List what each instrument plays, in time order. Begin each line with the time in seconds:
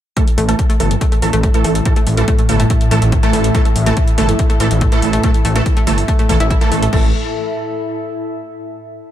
0.17 synth drone A2, synth stab E3 A3 A4, synth arpeggio sound A3, ambient pad E4, kick, closed hi-hat
0.26 ambient pad A4, closed hi-hat
0.38 analog synth bass A1, synth arpeggio sound A3, open hi-hat
0.49 synth stab E3 A3 A4, synth arpeggio sound A3, closed hi-hat
0.59 kick, closed hi-hat
0.69 synth arpeggio sound A3, ambient pad E5, closed hi-hat
0.80 analog synth bass G1, synth stab E3 A3 A4, synth arpeggio sound A3, open hi-hat
0.91 closed hi-hat
1.01 synth arpeggio sound A3, kick, closed hi-hat
1.12 synth arpeggio sound A3, closed hi-hat
1.22 analog synth bass A1, synth stab E3 A3 A4, open hi-hat
1.33 analog synth bass A1, synth arpeggio sound A3, closed hi-hat
1.43 synth arpeggio sound A3, kick, closed hi-hat
1.54 synth stab E3 A3 A4, closed hi-hat
1.64 analog synth bass A1, synth arpeggio sound A3, open hi-hat
1.75 synth arpeggio sound A3, closed hi-hat
1.85 synth stab E3 A3 A4, kick, closed hi-hat
1.96 synth arpeggio sound A3, closed hi-hat
2.07 analog synth bass A1, synth arpeggio sound A3, open hi-hat
2.17 synth stab E3 A3 A4, closed hi-hat
2.28 synth arpeggio sound A3, kick, closed hi-hat
2.39 synth arpeggio sound A3, closed hi-hat
2.49 analog synth bass G1, synth stab E3 A3 A4, open hi-hat
2.60 synth arpeggio sound A3, closed hi-hat
2.70 synth arpeggio sound A3, kick, closed hi-hat
2.81 closed hi-hat
2.91 analog synth bass A1, synth stab E3 A3 A4, synth arpeggio sound A3, open hi-hat
3.02 analog synth bass A1, synth arpeggio sound A3, closed hi-hat
3.12 kick, closed hi-hat
3.23 synth stab E3 A3 A4, synth arpeggio sound A3, closed hi-hat
3.33 analog synth bass A1, synth arpeggio sound A3, open hi-hat
3.44 closed hi-hat
3.55 synth stab E3 A3 A4, synth arpeggio sound A3, kick, closed hi-hat
3.65 synth arpeggio sound A3, closed hi-hat
3.76 analog synth bass A1, open hi-hat
3.86 synth stab E3 A3 A4, synth arpeggio sound A3, closed hi-hat
3.97 synth arpeggio sound A3, kick, closed hi-hat
4.08 closed hi-hat
4.18 analog synth bass G1, synth stab E3 A3 A4, synth arpeggio sound A3, open hi-hat
4.29 synth arpeggio sound A3, closed hi-hat
4.39 kick, closed hi-hat
4.50 synth arpeggio sound A3, closed hi-hat
4.60 analog synth bass A1, synth stab E3 A3 A4, synth arpeggio sound A3, open hi-hat
4.71 analog synth bass A1, closed hi-hat
4.81 synth arpeggio sound A3, kick, closed hi-hat
4.92 synth stab E3 A3 A4, synth arpeggio sound A3, closed hi-hat
5.02 analog synth bass A1, open hi-hat
5.13 synth arpeggio sound A3, closed hi-hat
5.24 synth stab E3 A3 A4, synth arpeggio sound A3, kick, closed hi-hat
5.34 closed hi-hat
5.45 analog synth bass A1, synth arpeggio sound A3, open hi-hat
5.56 synth stab E3 A3 A4, synth arpeggio sound A3, closed hi-hat
5.66 kick, closed hi-hat
5.77 synth arpeggio sound A3, closed hi-hat
5.87 analog synth bass G1, synth stab E3 A3 A4, synth arpeggio sound A3, open hi-hat
5.98 open hi-hat
6.08 synth arpeggio sound A3, kick, closed hi-hat
6.19 synth arpeggio sound A3, closed hi-hat
6.29 analog synth bass A1, synth stab E3 A3 A4, kick, open hi-hat
6.40 analog synth bass A1, synth arpeggio sound E4, closed hi-hat
6.50 synth arpeggio sound E4, kick, closed hi-hat
6.61 synth stab E3 A3 A4, closed hi-hat
6.72 analog synth bass A1, synth arpeggio sound A3, open hi-hat
6.82 synth arpeggio sound A3, closed hi-hat
6.93 analog synth bass A1, synth stab E3 A3 A4, synth arpeggio sound A3, ambient pad E4, kick, crash
6.99 ambient pad A4
7.05 ambient pad E5